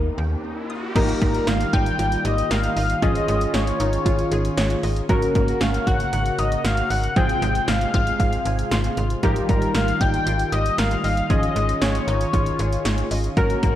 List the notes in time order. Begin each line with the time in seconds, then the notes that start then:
Already playing: D#2 A#3 D#4 G4 A#4, riser
0.18 D#2 G5
0.70 D#6
0.95 G#1 D#3 F3 G3 A#3 D#4 F4 G4 A#4, kick, closed hi-hat, crash
1.09 closed hi-hat
1.21 G#1 G3 A#4, kick, closed hi-hat
1.34 closed hi-hat
1.47 G#1 A#3 F5, snare, closed hi-hat
1.61 closed hi-hat
1.73 G#1 D#4 G5, kick, closed hi-hat
1.86 closed hi-hat
1.99 G#1 F4, closed hi-hat
2.12 closed hi-hat
2.25 G#1 G4 D#5, closed hi-hat
2.38 closed hi-hat
2.51 G#1 A#4 F5, snare, closed hi-hat
2.63 closed hi-hat
2.77 G#1 D#5 F5, open hi-hat
2.90 closed hi-hat
3.02 G#1 D#3 F3 C#4 F4 G#4 D#5, kick, closed hi-hat
3.15 closed hi-hat
3.28 G#1 G#3, closed hi-hat
3.41 closed hi-hat
3.54 G#1 C#4 C#5, snare, closed hi-hat
3.67 closed hi-hat
3.80 G#1 D#4, closed hi-hat
3.93 closed hi-hat
4.06 G#1 F4, kick, closed hi-hat
4.19 closed hi-hat
4.32 G#1 G#4, closed hi-hat
4.45 closed hi-hat
4.58 G#1 C#5, snare, closed hi-hat
4.70 closed hi-hat
4.83 G#1 D#5, open hi-hat
4.96 closed hi-hat
5.09 G#1 C#3 F#3 A#3 C#4 F#4 A#4, kick, closed hi-hat
5.22 closed hi-hat
5.35 G#1 A#3 A#4, kick, closed hi-hat
5.48 closed hi-hat
5.61 G#1 C#4 F5, snare, closed hi-hat
5.74 closed hi-hat
5.87 G#1 F#4 F#5, kick, closed hi-hat
6.00 closed hi-hat
6.13 G#1 F#5, closed hi-hat
6.26 closed hi-hat
6.39 G#1 D#5 A#5, closed hi-hat
6.52 closed hi-hat
6.64 G#1 F5 C#6, snare, closed hi-hat
6.77 closed hi-hat
6.90 G#1 F#5 F#6, open hi-hat
7.03 closed hi-hat
7.16 G#1 C3 F3 G#3 C4 F4 G#4 G5, kick, closed hi-hat
7.29 closed hi-hat
7.42 G#1 G#3, closed hi-hat
7.55 closed hi-hat
7.68 G#1 C4 F5, snare, closed hi-hat
7.81 closed hi-hat
7.94 G#1 F4, kick, closed hi-hat
8.07 closed hi-hat
8.20 G#1 F5, kick, closed hi-hat
8.33 closed hi-hat
8.45 G#1 G#5, closed hi-hat
8.59 closed hi-hat
8.71 G#1 C6, snare, closed hi-hat
8.84 closed hi-hat
8.97 G#1 F6, closed hi-hat
9.10 closed hi-hat
9.23 G#1 D#3 F3 G3 A#3 D#4 G4 A#4, kick, closed hi-hat
9.36 closed hi-hat
9.49 G#1 G3 A#4, kick, closed hi-hat
9.62 closed hi-hat
9.75 G#1 A#3 F5, snare, closed hi-hat
9.88 closed hi-hat
10.01 G#1 D#4 G5, kick, closed hi-hat
10.14 closed hi-hat
10.27 G#1 F4, closed hi-hat
10.39 closed hi-hat
10.52 G#1 G4 D#5, closed hi-hat
10.66 closed hi-hat
10.78 G#1 A#4 F5, snare, closed hi-hat
10.91 closed hi-hat
11.04 G#1 D#5 F5, open hi-hat
11.17 closed hi-hat
11.30 G#1 D#3 F3 C#4 F4 G#4 D#5, kick, closed hi-hat
11.43 closed hi-hat
11.56 G#1 G#3, closed hi-hat
11.69 closed hi-hat
11.82 G#1 C#4 C#5, snare, closed hi-hat
11.95 closed hi-hat
12.08 G#1 D#4, closed hi-hat
12.21 closed hi-hat
12.33 G#1 F4, kick, closed hi-hat
12.46 closed hi-hat
12.59 G#1 G#4, closed hi-hat
12.73 closed hi-hat
12.85 G#1 C#5, snare, closed hi-hat
12.98 closed hi-hat
13.11 G#1 D#5, open hi-hat
13.24 closed hi-hat
13.37 G#1 C#3 F#3 A#3 C#4 F#4 A#4, kick, closed hi-hat
13.50 closed hi-hat
13.63 G#1 A#3 A#4, kick, closed hi-hat